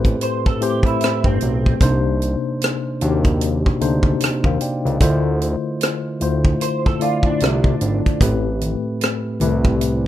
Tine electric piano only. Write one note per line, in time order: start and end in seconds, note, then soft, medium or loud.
0.00 0.61 A2 medium
0.00 0.61 A3 medium
0.00 0.62 C4 medium
0.00 0.62 G4 medium
0.00 1.82 A4 medium
0.00 1.82 B4 loud
0.00 0.50 C5 medium
0.61 1.54 A2 medium
0.61 1.54 A3 medium
0.61 1.55 C4 medium
0.61 1.55 G4 medium
0.61 1.55 C5 medium
1.80 2.74 C3 medium
1.80 2.74 A#3 medium
1.80 2.75 D4 medium
1.80 2.75 D#4 medium
1.80 2.75 C5 loud
3.01 3.66 C3 medium
3.01 3.66 A#3 medium
3.01 3.66 D4 medium
3.01 3.66 D#4 medium
3.01 3.10 F#4 medium
3.09 3.70 G4 loud
3.80 4.74 C3 medium
3.80 4.74 A#3 medium
3.80 4.74 D4 medium
3.80 4.75 D#4 medium
3.80 4.22 C5 medium
4.45 4.61 C5 medium
4.45 4.60 F5 medium
4.62 4.84 D5 medium
4.62 4.84 G5 medium
4.86 5.24 A#4 soft
4.86 5.23 D#5 medium
5.00 5.94 D3 medium
5.00 5.94 A3 medium
5.00 5.94 E4 medium
5.00 5.95 F4 medium
5.00 5.95 C5 loud
6.20 6.85 D3 medium
6.20 6.86 A3 medium
6.20 6.86 E4 medium
6.20 6.86 F4 medium
6.20 6.86 C5 medium
7.00 7.94 D3 medium
7.00 7.94 A3 medium
7.00 7.94 E4 medium
7.00 7.95 F4 medium
7.00 7.95 D5 medium
8.21 9.14 A2 medium
8.21 9.15 A3 medium
8.21 9.15 C4 medium
8.21 9.15 G4 medium
8.21 9.15 B4 medium
9.40 10.05 A2 medium
9.40 10.06 A3 medium
9.40 10.06 C4 medium
9.40 10.06 G4 medium
9.40 10.06 B4 medium